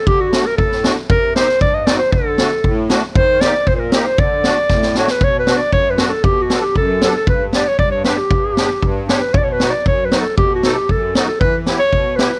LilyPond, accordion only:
<<
  \new Staff \with { instrumentName = "Accordion" } { \time 2/4 \tempo 4 = 116 r8 <a d' fis'>16 r8. <a d' fis'>16 r16 | r8 <c' ees' g'>16 r8. <c' ees' fis'>16 r16 | r8 <a d' fis'>16 r8. <a d' fis'>16 r16 | r8 <bes ees' g'>16 r8. <bes ees' g'>16 r16 |
r8 <a d' fis'>16 r8. <a d' fis'>16 r16 | r8 <b d' fis'>16 r8. <b d' fis'>16 r16 | r8 <b d' a'>16 r8. <b d' a'>16 r16 | r8 <b d' g'>16 r8. <b d' g'>16 r16 |
r8 <b d' g'>16 r8. <b d' g'>16 r16 | r8 <b dis' fis'>16 r8. <b dis' fis'>16 r16 | r8 <b dis' a'>16 r8. <b dis' fis'>16 r16 | r8 <b e' g'>16 r8. <b e' g'>16 r16 | }
  \new Staff \with { instrumentName = "Accordion" } { \clef bass \time 2/4 d4 a,4 | c4 g,4 | d4 a,4 | ees4 bes,4 |
d4 a,4 | b,4 fis,4 | b,4 fis,4 | g,4 g,4 |
g,4 g,4 | b,4 fis,4 | b,4 fis,4 | e4 b,4 | }
>>